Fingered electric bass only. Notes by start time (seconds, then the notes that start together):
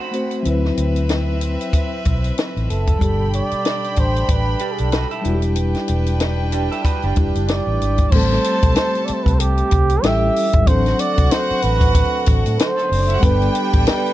0.46 D2
0.78 D2
2.06 B1
2.56 A1
2.70 F#1
3.02 G1
3.52 muted fingered electric bass stroke
3.98 A1
4.29 A1
4.80 B1
5.25 E1
5.89 E1
7.04 F#1
7.17 E1
7.35 F#1
7.67 A1
7.82 G#1
8.12 A1
8.63 B1
9.09 muted fingered electric bass stroke
9.27 C2
9.73 C2
10.04 A1
10.54 G#1
10.68 A1
11.19 C2
11.51 muted fingered electric bass stroke
11.64 A1
12.28 A1
12.46 A2
12.91 F#1
13.23 G1
13.74 A1